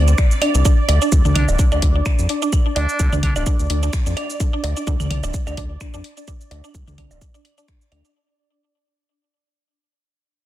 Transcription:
Already playing: analog synth bass D2, synth texture D5
0.08 synth arpeggio sound C4, cabasa
0.18 synth arpeggio sound D5, finger snap, kick, cabasa
0.31 cabasa
0.42 synth arpeggio sound D4, open hi-hat, high bongo, claves
0.55 analog synth bass C2, synth arpeggio sound D4, cabasa
0.65 synth arpeggio sound D4, kick, cabasa
0.89 analog synth bass D2, synth arpeggio sound D4, open hi-hat, high bongo, claves
1.02 synth arpeggio sound D4, cabasa
1.12 analog synth bass D2, kick, cabasa
1.25 analog synth bass D2, synth arpeggio sound D4, mid tom, cabasa
1.35 analog synth bass C2, synth arpeggio sound D4, muted trumpet D4, open hi-hat, mid tom, claves
1.48 analog synth bass D1, high bongo, cabasa
1.59 synth arpeggio sound D4, kick, cabasa
1.72 analog synth bass D2, synth arpeggio sound D4, high bongo, cabasa, claves
1.82 analog synth bass D2, kick, open hi-hat
1.95 synth arpeggio sound D4
2.06 synth arpeggio sound D4, finger snap, kick, cabasa
2.19 analog synth bass F2, cabasa
2.29 synth arpeggio sound D4, open hi-hat
2.42 synth arpeggio sound D4, cabasa
2.53 kick, cabasa, claves
2.66 synth arpeggio sound D4
2.76 analog synth bass D2, synth arpeggio sound D4, muted trumpet D4, open hi-hat, high bongo
2.89 cabasa
2.99 analog synth bass D2, synth arpeggio sound D4, kick, cabasa
3.12 analog synth bass D2, synth arpeggio sound D4, mid tom, cabasa
3.23 analog synth bass C2, muted trumpet D4, kick, open hi-hat, mid tom, claves
3.36 analog synth bass D1, muted trumpet D4, synth arpeggio sound D4, high bongo, cabasa, claves
3.46 synth arpeggio sound D4, kick, cabasa
3.59 analog synth bass D2, cabasa
3.70 analog synth bass D2, synth arpeggio sound D4, open hi-hat
3.83 synth arpeggio sound D4, cabasa
3.93 finger snap, kick, cabasa
4.06 analog synth bass F2, synth arpeggio sound D4, cabasa
4.17 synth arpeggio sound D4, open hi-hat, high bongo, claves
4.30 cabasa
4.40 synth arpeggio sound D4, kick, cabasa
4.53 synth arpeggio sound D4
4.64 analog synth bass D2, open hi-hat, high bongo
4.77 synth arpeggio sound D4, cabasa
4.87 analog synth bass D2, synth arpeggio sound D4, kick, cabasa
5.00 analog synth bass D2, mid tom, cabasa, claves
5.10 analog synth bass C2, synth arpeggio sound D4, open hi-hat, mid tom, claves
5.23 analog synth bass D1, synth arpeggio sound D4, high bongo, cabasa
5.34 kick, cabasa
5.47 analog synth bass D2, synth arpeggio sound D4, high bongo, cabasa, claves
5.57 analog synth bass D2, synth arpeggio sound D4, kick, open hi-hat
5.81 synth arpeggio sound D4, finger snap, kick, cabasa, claves
5.94 analog synth bass F2, synth arpeggio sound D4, cabasa
6.04 open hi-hat
6.17 synth arpeggio sound D4, cabasa
6.28 synth arpeggio sound D4, kick, cabasa
6.41 cabasa
6.51 analog synth bass D2, synth arpeggio sound D4, open hi-hat, high bongo
6.64 synth arpeggio sound D4, cabasa, claves
6.75 analog synth bass D2, kick, cabasa
6.87 analog synth bass D2, synth arpeggio sound D4, mid tom, cabasa
6.98 analog synth bass C2, synth arpeggio sound D4, kick, open hi-hat, mid tom, claves
7.11 analog synth bass D1, high bongo, cabasa
7.21 synth arpeggio sound D4, kick, cabasa
7.34 synth arpeggio sound D4, cabasa
7.45 open hi-hat, claves
7.58 synth arpeggio sound D4, cabasa
7.68 finger snap, kick, cabasa
7.81 cabasa
7.92 analog synth bass D2, synth arpeggio sound D4, open hi-hat, high bongo, claves
8.05 synth arpeggio sound D4, cabasa

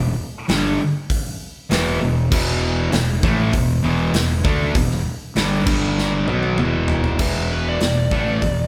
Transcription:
Already playing: fingered electric bass E1, distorted electric guitar E2 B2
0.48 fingered electric bass G1, distorted electric guitar G2 D3 G3, snare, open hi-hat
1.10 kick, open hi-hat
1.70 fingered electric bass E1, distorted electric guitar E2 B2 E3, snare, open hi-hat
2.00 fingered electric bass E1, distorted electric guitar E2 B2
2.31 fingered electric bass E1, distorted electric guitar E2 B2 E3, kick, crash
2.91 fingered electric bass E1, distorted electric guitar E2 B2, snare, open hi-hat
3.23 fingered electric bass A1, distorted electric guitar A2 E3 A3, kick
3.53 fingered electric bass E1, distorted electric guitar E2 B2, kick, open hi-hat
3.83 fingered electric bass E1, distorted electric guitar E2 B2 E3
4.13 fingered electric bass E1, distorted electric guitar E2 B2, snare, open hi-hat
4.44 fingered electric bass D2, distorted electric guitar D3 A3 D4, kick
4.75 fingered electric bass E1, distorted electric guitar E2 B2, kick, open hi-hat
4.91 snare
5.36 fingered electric bass G1, distorted electric guitar G2 D3 G3, snare, open hi-hat
5.66 fingered electric bass G1, distorted electric guitar G2 D3 G3, kick, crash
5.98 snare
6.27 fingered electric bass B1, distorted electric guitar B2 F#3 B3, high tom
6.43 high tom
6.58 fingered electric bass E1, distorted electric guitar E2 B2 E3, mid tom
6.88 floor tom
7.04 floor tom
7.19 fingered electric bass E1, distorted electric guitar E2 B2 E3, kick, crash
7.53 electric slide guitar B4
7.69 electric slide guitar D5
7.80 fingered electric bass E1, distorted electric guitar E2 B2, snare, open hi-hat
8.11 fingered electric bass A1, distorted electric guitar A2 E3 A3, kick
8.41 fingered electric bass E1, distorted electric guitar E2 B2, kick, open hi-hat

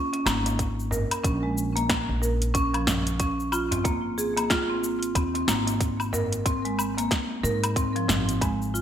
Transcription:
0.13 marimba C#4, closed hi-hat, darbuka ka
0.26 upright bass G#1, marimba A#3, snare, cabasa, low woodblock
0.46 closed hi-hat, darbuka tek, cabasa
0.59 kick, closed hi-hat, cabasa
0.80 cabasa
0.91 marimba A#4, darbuka tek, darbuka dum, cabasa
1.11 closed hi-hat, darbuka ka, cabasa, low woodblock
1.24 upright bass A#1, marimba C#4, kick, closed hi-hat, cabasa
1.43 marimba G#3
1.58 cabasa
1.76 marimba A#3, closed hi-hat, darbuka tek, cabasa
1.89 kick, snare, closed hi-hat, darbuka ka, cabasa, low woodblock
2.09 upright bass A#1, darbuka ka
2.22 marimba A#4, cabasa
2.42 closed hi-hat, cabasa
2.54 marimba C#4, kick, closed hi-hat, cabasa
2.74 marimba F3, closed hi-hat, low woodblock
2.87 snare, darbuka tek, darbuka dum, cabasa
3.07 closed hi-hat, cabasa
3.19 marimba C#4, kick, closed hi-hat, cabasa
3.40 cabasa
3.52 marimba F4, darbuka ka, cabasa, low woodblock
3.71 marimba C4, closed hi-hat, darbuka dum, cabasa
3.84 upright bass G#1, marimba A#3, kick, closed hi-hat, cabasa
4.18 marimba G#4, cabasa
4.37 marimba A#3, closed hi-hat, darbuka tek, cabasa, low woodblock
4.50 marimba F4, kick, snare, closed hi-hat, cabasa
4.70 marimba C4
4.84 cabasa
5.03 closed hi-hat, cabasa
5.15 upright bass D#2, marimba C4, kick, closed hi-hat, cabasa, low woodblock
5.34 marimba C4, closed hi-hat, darbuka ka
5.48 upright bass G#1, marimba A#3, snare, cabasa
5.67 closed hi-hat, darbuka tek, cabasa
5.81 kick, closed hi-hat, cabasa
6.00 cabasa, low woodblock
6.13 marimba A#4, darbuka tek, darbuka dum, cabasa
6.32 closed hi-hat, darbuka ka, cabasa
6.46 marimba C4, kick, closed hi-hat, cabasa
6.65 marimba G#3, closed hi-hat
6.79 cabasa, low woodblock
6.97 marimba A#3, closed hi-hat, darbuka tek, cabasa
7.11 kick, snare, closed hi-hat, darbuka ka, cabasa
7.30 darbuka ka
7.43 upright bass G#2, marimba A#4, cabasa
7.64 closed hi-hat, cabasa, low woodblock
7.76 marimba C4, kick, closed hi-hat, cabasa
7.96 marimba F3, closed hi-hat
8.08 upright bass G#1, snare, darbuka tek, darbuka dum, cabasa
8.29 closed hi-hat, cabasa
8.41 marimba G#3, kick, closed hi-hat, cabasa, low woodblock
8.62 cabasa
8.74 marimba F4, darbuka ka, cabasa

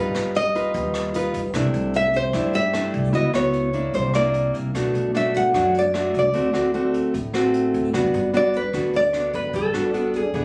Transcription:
Already playing: nylon-string guitar G3 D#4 F4 B4
0.14 upright bass G1, cross-stick, closed hi-hat
0.35 nylon-string guitar D#5, closed hi-hat
0.55 nylon-string guitar D#4 F4 B4, kick, closed hi-hat
0.74 upright bass D#2, nylon-string guitar G3, kick, closed hi-hat
0.94 cross-stick, closed hi-hat
1.14 nylon-string guitar D#4 F4 B4, closed hi-hat
1.34 upright bass G1, kick, closed hi-hat
1.54 upright bass C2, nylon-string guitar C3 A3 D4 E4, kick, cross-stick, closed hi-hat
1.74 upright bass C2, closed hi-hat
1.94 nylon-string guitar E5, closed hi-hat
2.13 nylon-string guitar C5, kick, closed hi-hat
2.33 upright bass G2, nylon-string guitar G3 A3 D4 E4, kick, cross-stick, closed hi-hat
2.53 nylon-string guitar E5, closed hi-hat
2.73 nylon-string guitar A3 D4 E4, cross-stick, closed hi-hat
2.94 upright bass C2, kick, closed hi-hat
3.12 upright bass C#2, nylon-string guitar C#3 B3 E4 F#4 D#5, kick, closed hi-hat
3.34 upright bass C#2, nylon-string guitar B3 E4 F#4 C#5, cross-stick, closed hi-hat
3.53 closed hi-hat
3.73 nylon-string guitar A#3 D4 E4, kick, closed hi-hat
3.94 upright bass C2, nylon-string guitar C3 C5, kick, closed hi-hat
4.14 nylon-string guitar A#3 D4 E4 D5, cross-stick, closed hi-hat
4.34 closed hi-hat
4.54 upright bass C2, kick, closed hi-hat
4.74 upright bass B1, nylon-string guitar B2 A3 D4 F#4, kick, cross-stick, closed hi-hat
4.94 upright bass B1, closed hi-hat
5.14 nylon-string guitar A3 D4 F#4 E5, closed hi-hat
5.34 nylon-string guitar F#5, kick, closed hi-hat
5.54 upright bass F#2, nylon-string guitar F#3 A3 D4 F#4, kick, cross-stick, closed hi-hat
5.74 closed hi-hat
5.79 nylon-string guitar D5
5.94 nylon-string guitar A3 D4 F#4, cross-stick, closed hi-hat
6.14 upright bass C2, kick, closed hi-hat
6.19 nylon-string guitar D5
6.34 upright bass D2, nylon-string guitar D3 A3 C4 F#4, kick, closed hi-hat
6.53 upright bass D2, nylon-string guitar A3 C4 F#4, cross-stick, closed hi-hat
6.74 nylon-string guitar A3 C4 F#4, closed hi-hat
6.94 kick, closed hi-hat
7.14 upright bass A1, nylon-string guitar A2, kick, closed hi-hat
7.33 nylon-string guitar A3 C4 F#4, cross-stick, closed hi-hat
7.54 closed hi-hat
7.74 upright bass D2, kick, closed hi-hat
7.93 upright bass G1, nylon-string guitar G3 B3 D4 F#4, kick, cross-stick, closed hi-hat
8.14 upright bass G1, closed hi-hat
8.34 nylon-string guitar B3 D4 F#4 D5, closed hi-hat
8.54 nylon-string guitar B4, kick, closed hi-hat
8.73 upright bass D2, nylon-string guitar D3 B3 D4 F#4, kick, cross-stick, closed hi-hat
8.93 nylon-string guitar D5, closed hi-hat
9.13 nylon-string guitar B3 D4 F#4, cross-stick, closed hi-hat
9.33 upright bass G1, nylon-string guitar B4, kick, closed hi-hat
9.53 upright bass G1, nylon-string guitar G3 A4, kick, closed hi-hat
9.73 upright bass G1, nylon-string guitar B3 D4 F#4, cross-stick, closed hi-hat
9.94 nylon-string guitar B3 D4 F#4, closed hi-hat
10.14 nylon-string guitar G#4, kick, closed hi-hat
10.34 upright bass E1, nylon-string guitar E3 B3 D4 G#4, kick, closed hi-hat

